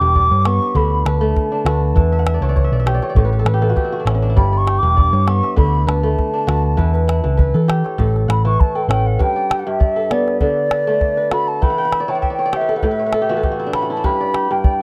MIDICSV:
0, 0, Header, 1, 5, 480
1, 0, Start_track
1, 0, Tempo, 603622
1, 1558, Time_signature, 4, 2, 24, 8
1, 11785, End_track
2, 0, Start_track
2, 0, Title_t, "Flute"
2, 0, Program_c, 0, 73
2, 0, Note_on_c, 0, 86, 110
2, 363, Note_on_c, 0, 85, 100
2, 375, Note_off_c, 0, 86, 0
2, 606, Note_on_c, 0, 83, 91
2, 618, Note_off_c, 0, 85, 0
2, 840, Note_on_c, 0, 81, 82
2, 852, Note_off_c, 0, 83, 0
2, 2036, Note_off_c, 0, 81, 0
2, 3473, Note_on_c, 0, 83, 98
2, 3637, Note_on_c, 0, 85, 94
2, 3649, Note_off_c, 0, 83, 0
2, 3803, Note_on_c, 0, 86, 108
2, 3814, Note_off_c, 0, 85, 0
2, 4193, Note_on_c, 0, 85, 100
2, 4205, Note_off_c, 0, 86, 0
2, 4430, Note_off_c, 0, 85, 0
2, 4435, Note_on_c, 0, 83, 93
2, 4675, Note_on_c, 0, 81, 86
2, 4687, Note_off_c, 0, 83, 0
2, 5875, Note_off_c, 0, 81, 0
2, 6604, Note_on_c, 0, 83, 83
2, 6721, Note_off_c, 0, 83, 0
2, 6727, Note_on_c, 0, 85, 99
2, 6838, Note_on_c, 0, 81, 92
2, 6850, Note_off_c, 0, 85, 0
2, 6962, Note_on_c, 0, 79, 78
2, 6974, Note_off_c, 0, 81, 0
2, 7070, Note_off_c, 0, 79, 0
2, 7074, Note_on_c, 0, 79, 93
2, 7206, Note_on_c, 0, 78, 86
2, 7218, Note_off_c, 0, 79, 0
2, 7323, Note_on_c, 0, 79, 102
2, 7334, Note_off_c, 0, 78, 0
2, 7626, Note_on_c, 0, 78, 69
2, 7638, Note_off_c, 0, 79, 0
2, 7685, Note_on_c, 0, 76, 96
2, 7697, Note_off_c, 0, 78, 0
2, 8042, Note_on_c, 0, 74, 96
2, 8054, Note_off_c, 0, 76, 0
2, 8271, Note_off_c, 0, 74, 0
2, 8276, Note_on_c, 0, 74, 99
2, 9004, Note_on_c, 0, 83, 104
2, 9016, Note_off_c, 0, 74, 0
2, 9127, Note_on_c, 0, 81, 94
2, 9139, Note_off_c, 0, 83, 0
2, 9246, Note_on_c, 0, 83, 104
2, 9258, Note_off_c, 0, 81, 0
2, 9621, Note_on_c, 0, 79, 100
2, 9633, Note_off_c, 0, 83, 0
2, 9699, Note_off_c, 0, 79, 0
2, 9705, Note_on_c, 0, 79, 86
2, 9792, Note_off_c, 0, 79, 0
2, 9808, Note_on_c, 0, 79, 101
2, 9991, Note_on_c, 0, 76, 101
2, 10003, Note_off_c, 0, 79, 0
2, 10149, Note_off_c, 0, 76, 0
2, 10154, Note_on_c, 0, 78, 66
2, 10217, Note_on_c, 0, 76, 94
2, 10229, Note_off_c, 0, 78, 0
2, 10720, Note_off_c, 0, 76, 0
2, 10928, Note_on_c, 0, 83, 100
2, 11047, Note_off_c, 0, 83, 0
2, 11066, Note_on_c, 0, 81, 92
2, 11177, Note_on_c, 0, 83, 102
2, 11188, Note_off_c, 0, 81, 0
2, 11544, Note_on_c, 0, 79, 94
2, 11556, Note_off_c, 0, 83, 0
2, 11785, Note_off_c, 0, 79, 0
2, 11785, End_track
3, 0, Start_track
3, 0, Title_t, "Kora"
3, 0, Program_c, 1, 46
3, 0, Note_on_c, 1, 62, 70
3, 0, Note_on_c, 1, 64, 62
3, 0, Note_on_c, 1, 67, 61
3, 0, Note_on_c, 1, 69, 65
3, 0, Note_on_c, 1, 74, 60
3, 11, Note_on_c, 1, 43, 75
3, 118, Note_off_c, 1, 74, 0
3, 121, Note_on_c, 1, 74, 63
3, 250, Note_on_c, 1, 73, 64
3, 298, Note_off_c, 1, 62, 0
3, 362, Note_on_c, 1, 59, 76
3, 398, Note_off_c, 1, 69, 0
3, 597, Note_on_c, 1, 50, 81
3, 597, Note_on_c, 1, 62, 69
3, 641, Note_off_c, 1, 43, 0
3, 645, Note_off_c, 1, 73, 0
3, 784, Note_off_c, 1, 64, 0
3, 838, Note_on_c, 1, 71, 69
3, 961, Note_on_c, 1, 57, 79
3, 1002, Note_off_c, 1, 74, 0
3, 1008, Note_off_c, 1, 67, 0
3, 1203, Note_off_c, 1, 62, 0
3, 1207, Note_on_c, 1, 62, 59
3, 1313, Note_off_c, 1, 71, 0
3, 1316, Note_on_c, 1, 66, 73
3, 1316, Note_on_c, 1, 71, 60
3, 1556, Note_on_c, 1, 52, 82
3, 1598, Note_off_c, 1, 50, 0
3, 1688, Note_on_c, 1, 76, 69
3, 1741, Note_on_c, 1, 78, 69
3, 1795, Note_off_c, 1, 76, 0
3, 1798, Note_on_c, 1, 76, 72
3, 1844, Note_off_c, 1, 59, 0
3, 1861, Note_on_c, 1, 74, 72
3, 1914, Note_off_c, 1, 52, 0
3, 1924, Note_on_c, 1, 52, 72
3, 1925, Note_on_c, 1, 73, 73
3, 1972, Note_off_c, 1, 62, 0
3, 1976, Note_off_c, 1, 74, 0
3, 1980, Note_on_c, 1, 74, 69
3, 2031, Note_off_c, 1, 73, 0
3, 2034, Note_on_c, 1, 73, 65
3, 2099, Note_off_c, 1, 76, 0
3, 2102, Note_on_c, 1, 76, 71
3, 2164, Note_off_c, 1, 74, 0
3, 2168, Note_on_c, 1, 74, 72
3, 2215, Note_off_c, 1, 73, 0
3, 2219, Note_off_c, 1, 76, 0
3, 2223, Note_on_c, 1, 76, 66
3, 2276, Note_on_c, 1, 67, 73
3, 2278, Note_on_c, 1, 73, 72
3, 2294, Note_off_c, 1, 71, 0
3, 2324, Note_off_c, 1, 66, 0
3, 2324, Note_off_c, 1, 78, 0
3, 2326, Note_off_c, 1, 74, 0
3, 2342, Note_on_c, 1, 74, 67
3, 2404, Note_off_c, 1, 73, 0
3, 2407, Note_on_c, 1, 73, 72
3, 2458, Note_off_c, 1, 74, 0
3, 2461, Note_on_c, 1, 74, 70
3, 2512, Note_off_c, 1, 73, 0
3, 2515, Note_on_c, 1, 45, 78
3, 2515, Note_on_c, 1, 73, 71
3, 2549, Note_off_c, 1, 57, 0
3, 2555, Note_off_c, 1, 52, 0
3, 2582, Note_on_c, 1, 71, 70
3, 2643, Note_off_c, 1, 71, 0
3, 2646, Note_on_c, 1, 71, 67
3, 2698, Note_on_c, 1, 69, 71
3, 2746, Note_off_c, 1, 71, 0
3, 2750, Note_on_c, 1, 71, 69
3, 2809, Note_off_c, 1, 67, 0
3, 2813, Note_on_c, 1, 67, 73
3, 2875, Note_off_c, 1, 69, 0
3, 2876, Note_on_c, 1, 52, 77
3, 2878, Note_on_c, 1, 69, 73
3, 2937, Note_on_c, 1, 66, 77
3, 2984, Note_off_c, 1, 67, 0
3, 2990, Note_on_c, 1, 67, 72
3, 3045, Note_off_c, 1, 76, 0
3, 3058, Note_on_c, 1, 64, 68
3, 3116, Note_off_c, 1, 66, 0
3, 3120, Note_on_c, 1, 66, 74
3, 3167, Note_off_c, 1, 67, 0
3, 3178, Note_on_c, 1, 62, 72
3, 3226, Note_off_c, 1, 73, 0
3, 3230, Note_off_c, 1, 64, 0
3, 3232, Note_on_c, 1, 61, 77
3, 3233, Note_on_c, 1, 64, 70
3, 3279, Note_off_c, 1, 74, 0
3, 3293, Note_off_c, 1, 61, 0
3, 3297, Note_on_c, 1, 61, 65
3, 3344, Note_off_c, 1, 62, 0
3, 3359, Note_on_c, 1, 62, 68
3, 3413, Note_off_c, 1, 64, 0
3, 3416, Note_on_c, 1, 64, 68
3, 3472, Note_on_c, 1, 43, 84
3, 3472, Note_on_c, 1, 74, 72
3, 3514, Note_off_c, 1, 45, 0
3, 3514, Note_off_c, 1, 52, 0
3, 3519, Note_off_c, 1, 61, 0
3, 3519, Note_off_c, 1, 66, 0
3, 3596, Note_off_c, 1, 74, 0
3, 3599, Note_on_c, 1, 74, 63
3, 3711, Note_on_c, 1, 67, 66
3, 3727, Note_off_c, 1, 71, 0
3, 3830, Note_off_c, 1, 43, 0
3, 3840, Note_on_c, 1, 43, 77
3, 3926, Note_off_c, 1, 69, 0
3, 3944, Note_off_c, 1, 74, 0
3, 3947, Note_on_c, 1, 74, 71
3, 4079, Note_on_c, 1, 73, 63
3, 4127, Note_off_c, 1, 62, 0
3, 4191, Note_on_c, 1, 59, 79
3, 4318, Note_on_c, 1, 76, 64
3, 4425, Note_on_c, 1, 50, 83
3, 4427, Note_on_c, 1, 62, 66
3, 4473, Note_off_c, 1, 43, 0
3, 4473, Note_off_c, 1, 73, 0
3, 4662, Note_off_c, 1, 64, 0
3, 4668, Note_on_c, 1, 71, 69
3, 4797, Note_on_c, 1, 57, 78
3, 4828, Note_off_c, 1, 74, 0
3, 4834, Note_off_c, 1, 67, 0
3, 5035, Note_off_c, 1, 62, 0
3, 5038, Note_on_c, 1, 62, 62
3, 5141, Note_off_c, 1, 76, 0
3, 5144, Note_off_c, 1, 71, 0
3, 5144, Note_on_c, 1, 66, 78
3, 5148, Note_on_c, 1, 71, 64
3, 5381, Note_off_c, 1, 71, 0
3, 5384, Note_on_c, 1, 52, 89
3, 5384, Note_on_c, 1, 71, 74
3, 5434, Note_off_c, 1, 50, 0
3, 5514, Note_off_c, 1, 71, 0
3, 5517, Note_on_c, 1, 71, 59
3, 5628, Note_on_c, 1, 64, 61
3, 5673, Note_off_c, 1, 59, 0
3, 5745, Note_off_c, 1, 52, 0
3, 5755, Note_on_c, 1, 52, 72
3, 5861, Note_off_c, 1, 71, 0
3, 5864, Note_on_c, 1, 71, 66
3, 5997, Note_on_c, 1, 69, 62
3, 6108, Note_on_c, 1, 67, 76
3, 6155, Note_off_c, 1, 66, 0
3, 6236, Note_on_c, 1, 73, 59
3, 6284, Note_off_c, 1, 62, 0
3, 6345, Note_off_c, 1, 69, 0
3, 6348, Note_on_c, 1, 45, 78
3, 6349, Note_on_c, 1, 69, 69
3, 6385, Note_off_c, 1, 57, 0
3, 6395, Note_off_c, 1, 52, 0
3, 6587, Note_on_c, 1, 78, 66
3, 6634, Note_off_c, 1, 67, 0
3, 6718, Note_on_c, 1, 52, 75
3, 6841, Note_off_c, 1, 71, 0
3, 6874, Note_off_c, 1, 64, 0
3, 6957, Note_off_c, 1, 69, 0
3, 6960, Note_on_c, 1, 69, 62
3, 7066, Note_off_c, 1, 78, 0
3, 7069, Note_on_c, 1, 61, 71
3, 7069, Note_on_c, 1, 78, 65
3, 7148, Note_off_c, 1, 73, 0
3, 7310, Note_on_c, 1, 43, 84
3, 7312, Note_on_c, 1, 71, 75
3, 7357, Note_off_c, 1, 45, 0
3, 7357, Note_off_c, 1, 52, 0
3, 7443, Note_on_c, 1, 74, 64
3, 7491, Note_off_c, 1, 61, 0
3, 7553, Note_on_c, 1, 67, 65
3, 7601, Note_off_c, 1, 78, 0
3, 7678, Note_off_c, 1, 43, 0
3, 7687, Note_on_c, 1, 43, 72
3, 7790, Note_off_c, 1, 74, 0
3, 7794, Note_on_c, 1, 74, 68
3, 7918, Note_off_c, 1, 69, 0
3, 7921, Note_on_c, 1, 69, 63
3, 8035, Note_on_c, 1, 59, 78
3, 8277, Note_on_c, 1, 50, 83
3, 8278, Note_on_c, 1, 62, 68
3, 8289, Note_off_c, 1, 71, 0
3, 8319, Note_off_c, 1, 43, 0
3, 8517, Note_on_c, 1, 71, 70
3, 8644, Note_off_c, 1, 62, 0
3, 8646, Note_on_c, 1, 57, 78
3, 8647, Note_on_c, 1, 62, 66
3, 8675, Note_off_c, 1, 74, 0
3, 8676, Note_off_c, 1, 67, 0
3, 8881, Note_off_c, 1, 71, 0
3, 8884, Note_on_c, 1, 71, 63
3, 8969, Note_off_c, 1, 69, 0
3, 8996, Note_on_c, 1, 66, 81
3, 8996, Note_on_c, 1, 69, 63
3, 9238, Note_on_c, 1, 52, 80
3, 9239, Note_on_c, 1, 79, 67
3, 9280, Note_off_c, 1, 50, 0
3, 9287, Note_off_c, 1, 66, 0
3, 9304, Note_on_c, 1, 78, 72
3, 9365, Note_off_c, 1, 79, 0
3, 9368, Note_on_c, 1, 79, 72
3, 9420, Note_off_c, 1, 78, 0
3, 9423, Note_on_c, 1, 78, 70
3, 9479, Note_on_c, 1, 76, 71
3, 9517, Note_off_c, 1, 59, 0
3, 9543, Note_on_c, 1, 74, 72
3, 9597, Note_off_c, 1, 52, 0
3, 9607, Note_on_c, 1, 52, 73
3, 9607, Note_on_c, 1, 73, 73
3, 9655, Note_off_c, 1, 62, 0
3, 9658, Note_off_c, 1, 74, 0
3, 9661, Note_on_c, 1, 74, 69
3, 9714, Note_off_c, 1, 76, 0
3, 9717, Note_on_c, 1, 76, 69
3, 9779, Note_off_c, 1, 74, 0
3, 9782, Note_on_c, 1, 74, 70
3, 9830, Note_off_c, 1, 73, 0
3, 9851, Note_on_c, 1, 73, 69
3, 9861, Note_off_c, 1, 71, 0
3, 9902, Note_off_c, 1, 74, 0
3, 9905, Note_on_c, 1, 74, 74
3, 9957, Note_off_c, 1, 73, 0
3, 9960, Note_on_c, 1, 67, 79
3, 9960, Note_on_c, 1, 73, 72
3, 10008, Note_off_c, 1, 78, 0
3, 10027, Note_on_c, 1, 71, 71
3, 10044, Note_off_c, 1, 69, 0
3, 10088, Note_on_c, 1, 69, 72
3, 10109, Note_off_c, 1, 79, 0
3, 10143, Note_off_c, 1, 71, 0
3, 10146, Note_on_c, 1, 71, 76
3, 10201, Note_off_c, 1, 69, 0
3, 10202, Note_on_c, 1, 45, 88
3, 10204, Note_on_c, 1, 69, 67
3, 10234, Note_off_c, 1, 57, 0
3, 10242, Note_off_c, 1, 52, 0
3, 10263, Note_off_c, 1, 71, 0
3, 10266, Note_on_c, 1, 71, 73
3, 10329, Note_off_c, 1, 73, 0
3, 10332, Note_on_c, 1, 73, 67
3, 10380, Note_off_c, 1, 74, 0
3, 10385, Note_off_c, 1, 71, 0
3, 10388, Note_on_c, 1, 71, 68
3, 10445, Note_off_c, 1, 69, 0
3, 10448, Note_on_c, 1, 69, 74
3, 10505, Note_off_c, 1, 67, 0
3, 10509, Note_on_c, 1, 67, 75
3, 10539, Note_off_c, 1, 76, 0
3, 10570, Note_on_c, 1, 52, 82
3, 10574, Note_on_c, 1, 66, 78
3, 10625, Note_off_c, 1, 69, 0
3, 10628, Note_on_c, 1, 69, 76
3, 10681, Note_off_c, 1, 67, 0
3, 10684, Note_on_c, 1, 67, 67
3, 10732, Note_off_c, 1, 66, 0
3, 10748, Note_on_c, 1, 66, 68
3, 10811, Note_on_c, 1, 64, 71
3, 10866, Note_on_c, 1, 62, 69
3, 10913, Note_off_c, 1, 73, 0
3, 10920, Note_off_c, 1, 64, 0
3, 10922, Note_on_c, 1, 61, 77
3, 10924, Note_on_c, 1, 64, 67
3, 10986, Note_off_c, 1, 66, 0
3, 10989, Note_on_c, 1, 66, 68
3, 11037, Note_off_c, 1, 67, 0
3, 11050, Note_off_c, 1, 64, 0
3, 11053, Note_on_c, 1, 64, 75
3, 11103, Note_off_c, 1, 62, 0
3, 11106, Note_on_c, 1, 62, 71
3, 11164, Note_off_c, 1, 71, 0
3, 11165, Note_on_c, 1, 43, 89
3, 11167, Note_on_c, 1, 71, 75
3, 11205, Note_off_c, 1, 45, 0
3, 11205, Note_off_c, 1, 52, 0
3, 11212, Note_off_c, 1, 66, 0
3, 11296, Note_on_c, 1, 74, 67
3, 11343, Note_off_c, 1, 61, 0
3, 11402, Note_on_c, 1, 67, 67
3, 11526, Note_off_c, 1, 43, 0
3, 11535, Note_on_c, 1, 43, 83
3, 11640, Note_off_c, 1, 74, 0
3, 11643, Note_on_c, 1, 74, 69
3, 11676, Note_off_c, 1, 69, 0
3, 11785, Note_off_c, 1, 43, 0
3, 11785, Note_off_c, 1, 62, 0
3, 11785, Note_off_c, 1, 64, 0
3, 11785, Note_off_c, 1, 67, 0
3, 11785, Note_off_c, 1, 71, 0
3, 11785, Note_off_c, 1, 74, 0
3, 11785, End_track
4, 0, Start_track
4, 0, Title_t, "Picked electric bass"
4, 0, Program_c, 2, 34
4, 9, Note_on_c, 2, 28, 78
4, 225, Note_off_c, 2, 28, 0
4, 246, Note_on_c, 2, 43, 92
4, 463, Note_off_c, 2, 43, 0
4, 595, Note_on_c, 2, 38, 98
4, 812, Note_off_c, 2, 38, 0
4, 838, Note_on_c, 2, 38, 81
4, 1052, Note_off_c, 2, 38, 0
4, 1313, Note_on_c, 2, 38, 86
4, 1529, Note_off_c, 2, 38, 0
4, 1551, Note_on_c, 2, 40, 92
4, 1883, Note_off_c, 2, 40, 0
4, 1919, Note_on_c, 2, 37, 80
4, 2136, Note_off_c, 2, 37, 0
4, 2162, Note_on_c, 2, 35, 90
4, 2378, Note_off_c, 2, 35, 0
4, 2506, Note_on_c, 2, 33, 94
4, 2724, Note_off_c, 2, 33, 0
4, 2745, Note_on_c, 2, 33, 87
4, 2963, Note_off_c, 2, 33, 0
4, 3224, Note_on_c, 2, 33, 88
4, 3443, Note_off_c, 2, 33, 0
4, 3465, Note_on_c, 2, 31, 92
4, 3799, Note_off_c, 2, 31, 0
4, 3839, Note_on_c, 2, 28, 86
4, 4055, Note_off_c, 2, 28, 0
4, 4078, Note_on_c, 2, 43, 99
4, 4295, Note_off_c, 2, 43, 0
4, 4431, Note_on_c, 2, 38, 98
4, 4647, Note_off_c, 2, 38, 0
4, 4669, Note_on_c, 2, 38, 88
4, 4886, Note_off_c, 2, 38, 0
4, 5151, Note_on_c, 2, 38, 90
4, 5367, Note_off_c, 2, 38, 0
4, 5389, Note_on_c, 2, 40, 94
4, 5722, Note_off_c, 2, 40, 0
4, 5762, Note_on_c, 2, 37, 78
4, 5978, Note_off_c, 2, 37, 0
4, 6000, Note_on_c, 2, 52, 92
4, 6217, Note_off_c, 2, 52, 0
4, 6350, Note_on_c, 2, 33, 101
4, 6567, Note_off_c, 2, 33, 0
4, 6588, Note_on_c, 2, 33, 85
4, 6806, Note_off_c, 2, 33, 0
4, 7065, Note_on_c, 2, 33, 92
4, 7285, Note_off_c, 2, 33, 0
4, 11785, End_track
5, 0, Start_track
5, 0, Title_t, "Calabash"
5, 124, Note_on_c, 9, 36, 62
5, 203, Note_off_c, 9, 36, 0
5, 361, Note_on_c, 9, 38, 63
5, 441, Note_off_c, 9, 38, 0
5, 497, Note_on_c, 9, 38, 20
5, 576, Note_off_c, 9, 38, 0
5, 600, Note_on_c, 9, 36, 63
5, 680, Note_off_c, 9, 36, 0
5, 845, Note_on_c, 9, 38, 68
5, 925, Note_off_c, 9, 38, 0
5, 1085, Note_on_c, 9, 36, 64
5, 1085, Note_on_c, 9, 38, 21
5, 1165, Note_off_c, 9, 36, 0
5, 1165, Note_off_c, 9, 38, 0
5, 1323, Note_on_c, 9, 38, 68
5, 1403, Note_off_c, 9, 38, 0
5, 1565, Note_on_c, 9, 36, 65
5, 1565, Note_on_c, 9, 38, 22
5, 1645, Note_off_c, 9, 36, 0
5, 1645, Note_off_c, 9, 38, 0
5, 1802, Note_on_c, 9, 38, 67
5, 1881, Note_off_c, 9, 38, 0
5, 2041, Note_on_c, 9, 36, 63
5, 2121, Note_off_c, 9, 36, 0
5, 2281, Note_on_c, 9, 38, 65
5, 2361, Note_off_c, 9, 38, 0
5, 2405, Note_on_c, 9, 38, 21
5, 2485, Note_off_c, 9, 38, 0
5, 2517, Note_on_c, 9, 36, 69
5, 2596, Note_off_c, 9, 36, 0
5, 2753, Note_on_c, 9, 38, 68
5, 2833, Note_off_c, 9, 38, 0
5, 2996, Note_on_c, 9, 36, 65
5, 2996, Note_on_c, 9, 38, 22
5, 3076, Note_off_c, 9, 36, 0
5, 3076, Note_off_c, 9, 38, 0
5, 3239, Note_on_c, 9, 38, 64
5, 3318, Note_off_c, 9, 38, 0
5, 3478, Note_on_c, 9, 36, 62
5, 3478, Note_on_c, 9, 38, 18
5, 3557, Note_off_c, 9, 36, 0
5, 3557, Note_off_c, 9, 38, 0
5, 3717, Note_on_c, 9, 38, 61
5, 3797, Note_off_c, 9, 38, 0
5, 3959, Note_on_c, 9, 36, 61
5, 4038, Note_off_c, 9, 36, 0
5, 4196, Note_on_c, 9, 38, 58
5, 4275, Note_off_c, 9, 38, 0
5, 4329, Note_on_c, 9, 38, 20
5, 4408, Note_off_c, 9, 38, 0
5, 4437, Note_on_c, 9, 36, 64
5, 4517, Note_off_c, 9, 36, 0
5, 4680, Note_on_c, 9, 38, 60
5, 4760, Note_off_c, 9, 38, 0
5, 4920, Note_on_c, 9, 36, 63
5, 4920, Note_on_c, 9, 38, 19
5, 4999, Note_off_c, 9, 36, 0
5, 4999, Note_off_c, 9, 38, 0
5, 5157, Note_on_c, 9, 38, 64
5, 5237, Note_off_c, 9, 38, 0
5, 5397, Note_on_c, 9, 36, 61
5, 5397, Note_on_c, 9, 38, 19
5, 5476, Note_off_c, 9, 36, 0
5, 5476, Note_off_c, 9, 38, 0
5, 5529, Note_on_c, 9, 38, 22
5, 5609, Note_off_c, 9, 38, 0
5, 5639, Note_on_c, 9, 38, 64
5, 5718, Note_off_c, 9, 38, 0
5, 5877, Note_on_c, 9, 36, 64
5, 5956, Note_off_c, 9, 36, 0
5, 6010, Note_on_c, 9, 38, 19
5, 6090, Note_off_c, 9, 38, 0
5, 6119, Note_on_c, 9, 38, 67
5, 6199, Note_off_c, 9, 38, 0
5, 6250, Note_on_c, 9, 38, 20
5, 6330, Note_off_c, 9, 38, 0
5, 6359, Note_on_c, 9, 36, 67
5, 6438, Note_off_c, 9, 36, 0
5, 6490, Note_on_c, 9, 38, 20
5, 6569, Note_off_c, 9, 38, 0
5, 6600, Note_on_c, 9, 38, 66
5, 6679, Note_off_c, 9, 38, 0
5, 6844, Note_on_c, 9, 36, 69
5, 6924, Note_off_c, 9, 36, 0
5, 7083, Note_on_c, 9, 38, 70
5, 7163, Note_off_c, 9, 38, 0
5, 7319, Note_on_c, 9, 36, 75
5, 7319, Note_on_c, 9, 38, 23
5, 7399, Note_off_c, 9, 36, 0
5, 7399, Note_off_c, 9, 38, 0
5, 7563, Note_on_c, 9, 38, 73
5, 7643, Note_off_c, 9, 38, 0
5, 7800, Note_on_c, 9, 36, 64
5, 7879, Note_off_c, 9, 36, 0
5, 8040, Note_on_c, 9, 38, 67
5, 8119, Note_off_c, 9, 38, 0
5, 8173, Note_on_c, 9, 38, 22
5, 8253, Note_off_c, 9, 38, 0
5, 8275, Note_on_c, 9, 36, 64
5, 8355, Note_off_c, 9, 36, 0
5, 8518, Note_on_c, 9, 38, 64
5, 8597, Note_off_c, 9, 38, 0
5, 8756, Note_on_c, 9, 36, 65
5, 8756, Note_on_c, 9, 38, 19
5, 8836, Note_off_c, 9, 36, 0
5, 8836, Note_off_c, 9, 38, 0
5, 8998, Note_on_c, 9, 38, 61
5, 9077, Note_off_c, 9, 38, 0
5, 9246, Note_on_c, 9, 36, 56
5, 9246, Note_on_c, 9, 38, 18
5, 9325, Note_off_c, 9, 36, 0
5, 9325, Note_off_c, 9, 38, 0
5, 9483, Note_on_c, 9, 38, 60
5, 9562, Note_off_c, 9, 38, 0
5, 9724, Note_on_c, 9, 36, 56
5, 9804, Note_off_c, 9, 36, 0
5, 9963, Note_on_c, 9, 38, 59
5, 10043, Note_off_c, 9, 38, 0
5, 10093, Note_on_c, 9, 38, 18
5, 10173, Note_off_c, 9, 38, 0
5, 10199, Note_on_c, 9, 36, 59
5, 10278, Note_off_c, 9, 36, 0
5, 10437, Note_on_c, 9, 38, 59
5, 10517, Note_off_c, 9, 38, 0
5, 10683, Note_on_c, 9, 36, 59
5, 10683, Note_on_c, 9, 38, 18
5, 10762, Note_off_c, 9, 36, 0
5, 10762, Note_off_c, 9, 38, 0
5, 10921, Note_on_c, 9, 38, 57
5, 11001, Note_off_c, 9, 38, 0
5, 11166, Note_on_c, 9, 36, 62
5, 11166, Note_on_c, 9, 38, 19
5, 11246, Note_off_c, 9, 36, 0
5, 11246, Note_off_c, 9, 38, 0
5, 11407, Note_on_c, 9, 38, 60
5, 11486, Note_off_c, 9, 38, 0
5, 11645, Note_on_c, 9, 36, 64
5, 11724, Note_off_c, 9, 36, 0
5, 11785, End_track
0, 0, End_of_file